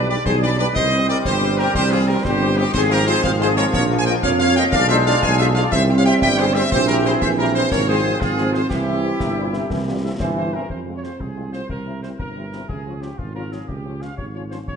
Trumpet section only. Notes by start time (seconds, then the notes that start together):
0.09 D5
0.26 C5
0.43 D5
0.59 D5
0.75 D#5
1.09 D5
1.25 C5
1.58 A#4
1.76 C5
1.92 G#4
2.08 A#4
2.24 C5
2.58 G4
2.74 C5
2.91 A#4
3.07 C5
3.24 F5
3.41 C5
3.57 C#5
3.73 C#5
3.99 G#5
4.06 G5
4.23 F5
4.40 F5
4.56 G5
4.72 F5
4.89 E5
5.06 F5
5.22 G#5
5.38 E5
5.55 F5
5.72 E5
5.98 F5
6.06 G5
6.22 G5
6.38 C5
6.54 E5
6.72 C5
6.88 A#4
7.05 C5
7.21 E5
7.39 A#4
7.55 C5
7.71 C#5
7.88 C5
8.21 G#4
8.54 C5
8.70 G4
10.04 E5
10.20 C5
10.37 C5
10.53 A#4
10.70 C5
10.96 C#5
11.04 C5
11.20 G#4
11.52 C5
11.70 A#4
12.02 C5
12.19 A#4
12.69 G#4
13.01 G4
13.17 F4
13.35 A#4
13.52 G#4
13.68 G4
14.02 F5
14.18 C#5
14.35 C#5
14.51 C5
14.68 C#5